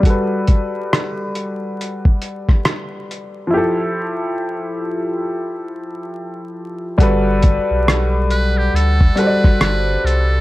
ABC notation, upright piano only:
X:1
M:4/4
L:1/16
Q:"Swing 16ths" 1/4=69
K:G
V:1 name="Upright piano"
[G,FAB]16 | [=F,EGA]16 | [G,FAB]6- [G,FAB] z3 [G,FAcd]6 |]